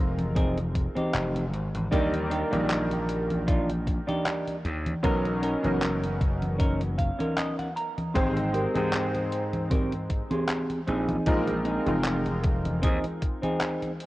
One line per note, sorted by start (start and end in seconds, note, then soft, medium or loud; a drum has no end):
0.00 0.86 F1 medium
0.00 1.94 G#3 medium
0.00 1.95 C4 medium
0.00 1.94 D#4 medium
0.00 1.94 F4 medium
0.00 1.93 A#4 medium
0.19 closed hi-hat soft
0.19 high conga soft
0.35 0.57 C4 medium
0.35 0.58 D#4 medium
0.35 0.58 G#4 medium
0.35 kick loud
0.35 closed hi-hat medium
0.35 high conga soft
0.58 closed hi-hat soft
0.58 high conga soft
0.74 muted clean electric guitar stroke soft
0.74 kick medium
0.74 closed hi-hat medium
0.95 1.44 C4 medium
0.95 1.44 D#4 medium
0.95 1.45 G4 medium
0.95 muted slap bass stroke soft
0.95 closed hi-hat soft
0.95 high conga medium
1.14 1.53 F1 medium
1.14 clap loud
1.14 closed hi-hat medium
1.14 high conga soft
1.36 closed hi-hat soft
1.36 high conga soft
1.53 1.68 G#1 medium
1.53 closed hi-hat soft
1.74 1.87 G#1 medium
1.74 closed hi-hat soft
1.74 high conga soft
1.91 2.42 D#2 loud
1.91 2.48 D#3 medium
1.91 2.47 G3 medium
1.91 2.47 A#3 medium
1.91 2.13 D4 loud
1.91 2.13 D#4 medium
1.91 2.14 G4 loud
1.91 2.48 A#4 loud
1.91 2.47 D5 medium
1.91 kick loud
1.91 closed hi-hat medium
1.91 high conga soft
2.14 closed hi-hat soft
2.14 high conga soft
2.30 2.91 D4 medium
2.30 2.91 D#4 medium
2.30 2.92 G4 medium
2.30 closed hi-hat medium
2.51 3.98 A#1 medium
2.51 5.00 D#3 medium
2.51 4.99 G3 medium
2.51 4.99 A#3 medium
2.51 5.00 A#4 medium
2.51 5.00 D5 medium
2.51 closed hi-hat soft
2.51 high conga medium
2.70 clap loud
2.70 closed hi-hat medium
2.70 high conga soft
2.91 closed hi-hat soft
2.91 high conga soft
3.09 closed hi-hat medium
3.31 closed hi-hat soft
3.31 high conga medium
3.47 3.69 D4 medium
3.47 3.69 D#4 medium
3.47 3.70 F4 medium
3.47 kick loud
3.47 closed hi-hat medium
3.47 high conga soft
3.70 closed hi-hat soft
3.70 high conga soft
3.86 muted clean electric guitar stroke soft
3.86 kick medium
3.86 closed hi-hat medium
4.07 4.56 D4 medium
4.07 4.56 D#4 medium
4.07 4.56 G4 medium
4.07 closed hi-hat soft
4.07 high conga soft
4.26 clap loud
4.26 closed hi-hat medium
4.26 high conga soft
4.47 closed hi-hat soft
4.47 high conga soft
4.65 4.93 D#2 medium
4.65 closed hi-hat soft
4.86 closed hi-hat soft
4.86 high conga medium
5.03 5.54 B1 medium
5.03 5.59 F#3 medium
5.03 5.59 B3 medium
5.03 5.25 C#4 loud
5.03 5.59 C#4 medium
5.03 5.25 D#4 medium
5.03 5.59 D#4 medium
5.03 5.25 A#4 loud
5.03 5.59 A#4 loud
5.03 kick loud
5.03 closed hi-hat medium
5.03 high conga soft
5.25 closed hi-hat soft
5.25 high conga soft
5.42 6.03 C#4 medium
5.42 6.03 D#4 medium
5.42 6.03 A#4 medium
5.42 closed hi-hat medium
5.63 7.10 F#1 medium
5.63 8.11 F#3 medium
5.63 8.11 B3 medium
5.63 8.11 C#4 medium
5.63 8.12 D#4 medium
5.63 8.12 A#4 medium
5.63 closed hi-hat soft
5.63 high conga medium
5.82 clap loud
5.82 closed hi-hat medium
5.82 high conga soft
6.03 closed hi-hat soft
6.03 high conga soft
6.21 kick loud
6.21 closed hi-hat medium
6.42 closed hi-hat soft
6.42 high conga medium
6.58 6.80 C#4 medium
6.58 6.81 D#4 medium
6.58 6.81 A#4 loud
6.58 kick loud
6.58 closed hi-hat medium
6.58 high conga soft
6.81 closed hi-hat soft
6.81 high conga soft
6.98 7.35 F5 medium
6.98 muted clean electric guitar stroke soft
6.98 kick medium
6.98 closed hi-hat medium
7.19 7.67 C#4 medium
7.19 7.68 D#4 medium
7.19 7.68 A#4 medium
7.19 closed hi-hat soft
7.19 high conga medium
7.37 7.57 D#5 medium
7.37 clap loud
7.37 closed hi-hat medium
7.37 high conga soft
7.59 7.75 F#5 medium
7.59 closed hi-hat soft
7.59 high conga soft
7.76 8.13 A#5 medium
7.76 closed hi-hat soft
7.98 closed hi-hat soft
7.98 high conga medium
8.14 8.66 G#1 medium
8.14 8.70 G#3 medium
8.14 8.36 C4 loud
8.14 8.71 C4 medium
8.14 8.71 D#4 medium
8.14 8.37 G4 medium
8.14 8.37 G#4 loud
8.14 8.71 C5 loud
8.14 8.71 G5 medium
8.14 kick loud
8.14 closed hi-hat medium
8.14 high conga soft
8.37 closed hi-hat soft
8.37 high conga soft
8.53 9.14 C4 medium
8.53 9.15 G4 medium
8.53 9.15 A#4 medium
8.53 closed hi-hat medium
8.75 10.21 G#2 medium
8.75 10.86 G#3 medium
8.75 10.86 C4 medium
8.75 10.86 D#4 medium
8.75 10.87 C5 medium
8.75 10.87 G5 medium
8.75 closed hi-hat soft
8.75 high conga medium
8.93 clap loud
8.93 closed hi-hat medium
8.93 high conga soft
9.15 closed hi-hat soft
9.15 high conga soft
9.32 closed hi-hat medium
9.53 closed hi-hat soft
9.53 high conga medium
9.70 9.92 C4 medium
9.70 9.93 G4 medium
9.70 9.93 A#4 loud
9.70 kick loud
9.70 closed hi-hat medium
9.70 high conga soft
9.93 closed hi-hat soft
9.93 high conga soft
10.10 muted clean electric guitar stroke soft
10.10 kick medium
10.10 closed hi-hat medium
10.31 10.79 C4 medium
10.31 10.79 G4 medium
10.31 10.80 G#4 loud
10.31 closed hi-hat soft
10.31 high conga medium
10.49 clap loud
10.49 closed hi-hat medium
10.49 high conga soft
10.70 closed hi-hat soft
10.70 high conga soft
10.87 11.17 A#1 medium
10.87 11.52 C4 medium
10.87 11.52 D#4 medium
10.87 11.52 G#4 loud
10.87 closed hi-hat soft
11.09 closed hi-hat soft
11.09 high conga medium
11.27 11.77 A#1 medium
11.27 11.82 G#3 medium
11.27 11.82 C4 medium
11.27 11.83 D#4 medium
11.27 11.83 F4 medium
11.27 11.83 A#4 medium
11.27 kick loud
11.27 closed hi-hat medium
11.27 high conga soft
11.48 closed hi-hat soft
11.48 high conga soft
11.65 12.26 C4 medium
11.65 12.26 D#4 medium
11.65 12.27 G#4 medium
11.65 closed hi-hat medium
11.86 12.83 F1 medium
11.86 14.06 G#3 medium
11.86 14.06 C4 medium
11.86 14.06 D#4 medium
11.86 14.06 F4 medium
11.86 14.06 A#4 medium
11.86 closed hi-hat soft
11.86 high conga medium
12.05 clap loud
12.05 closed hi-hat medium
12.05 high conga soft
12.26 closed hi-hat soft
12.26 high conga soft
12.44 kick loud
12.44 closed hi-hat medium
12.65 closed hi-hat soft
12.65 high conga medium
12.82 12.98 D#2 medium
12.82 13.04 C4 medium
12.82 13.04 D#4 medium
12.82 13.04 G#4 medium
12.82 kick loud
12.82 closed hi-hat medium
12.82 high conga soft
13.04 closed hi-hat soft
13.04 high conga soft
13.21 muted clean electric guitar stroke soft
13.21 kick medium
13.21 closed hi-hat medium
13.42 13.91 C4 medium
13.42 13.91 D#4 medium
13.42 13.91 G#4 medium
13.42 closed hi-hat soft
13.42 high conga medium
13.61 clap loud
13.61 closed hi-hat medium
13.61 high conga soft
13.82 closed hi-hat soft
13.82 high conga soft
14.00 closed hi-hat soft